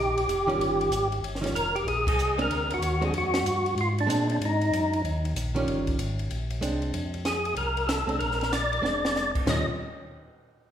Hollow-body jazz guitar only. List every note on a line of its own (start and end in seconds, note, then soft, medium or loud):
0.47 0.89 D#3 medium
0.47 0.89 G3 medium
0.47 0.89 C#4 medium
0.47 0.89 F4 medium
1.41 1.53 D#3 medium
1.41 1.53 G3 medium
1.41 1.53 C#4 medium
1.41 1.54 F4 medium
2.38 2.49 G#3 medium
2.38 2.49 C4 medium
2.38 2.49 D4 medium
3.01 3.12 G#3 medium
3.01 3.12 C4 medium
3.01 3.12 D4 medium
4.07 4.39 G#3 medium
4.07 4.40 C4 medium
4.07 4.40 D4 medium
5.55 5.96 D#3 medium
5.55 5.96 G3 medium
5.55 5.96 C#4 medium
5.55 5.97 F4 medium
6.61 6.93 G#3 medium
6.61 6.94 C4 medium
6.61 6.94 D4 medium
8.07 8.18 G#3 medium
8.07 8.19 C4 medium
8.07 8.19 D4 medium
8.82 9.30 G#3 medium
8.82 9.31 C4 medium
8.82 9.31 D4 medium
9.46 9.65 D#3 medium
9.46 9.65 G3 medium
9.46 9.65 C#4 medium
9.46 9.65 F4 medium